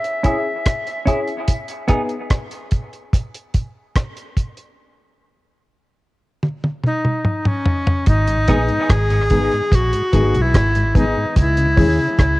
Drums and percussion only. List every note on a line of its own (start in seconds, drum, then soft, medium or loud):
0.04 closed hi-hat medium
0.24 kick medium
0.24 closed hi-hat medium
0.66 kick medium
0.66 cross-stick loud
0.66 closed hi-hat medium
0.87 closed hi-hat soft
1.07 kick medium
1.07 closed hi-hat medium
1.27 closed hi-hat soft
1.48 kick medium
1.48 closed hi-hat medium
1.68 closed hi-hat soft
1.88 kick medium
1.88 closed hi-hat medium
2.09 closed hi-hat soft
2.30 kick loud
2.30 cross-stick loud
2.30 closed hi-hat medium
2.51 closed hi-hat soft
2.71 kick medium
2.71 closed hi-hat medium
2.93 closed hi-hat soft
3.13 kick loud
3.13 closed hi-hat medium
3.34 closed hi-hat medium
3.54 kick medium
3.54 closed hi-hat medium
3.95 kick medium
3.95 cross-stick loud
3.95 closed hi-hat medium
4.17 closed hi-hat soft
4.37 kick medium
4.37 closed hi-hat medium
4.57 closed hi-hat soft
6.43 high tom medium
6.64 high tom medium
6.83 mid tom medium
7.05 mid tom medium
7.25 mid tom medium
7.45 mid tom medium
7.66 floor tom medium
7.87 floor tom medium
8.07 kick medium
8.07 closed hi-hat medium
8.28 closed hi-hat medium
8.48 kick medium
8.48 closed hi-hat medium
8.68 closed hi-hat soft
8.90 kick loud
8.90 cross-stick loud
8.90 closed hi-hat medium
9.10 closed hi-hat soft
9.30 kick medium
9.30 closed hi-hat medium
9.52 closed hi-hat soft
9.72 kick loud
9.72 closed hi-hat loud
9.93 closed hi-hat medium
10.13 kick medium
10.13 closed hi-hat medium
10.35 closed hi-hat soft
10.54 kick loud
10.54 cross-stick loud
10.54 closed hi-hat medium
10.75 closed hi-hat medium
10.95 kick medium
10.95 closed hi-hat medium
11.36 kick medium
11.36 closed hi-hat medium
11.57 closed hi-hat medium
11.77 kick loud
11.77 open hi-hat medium
12.19 kick loud
12.19 cross-stick loud
12.19 closed hi-hat medium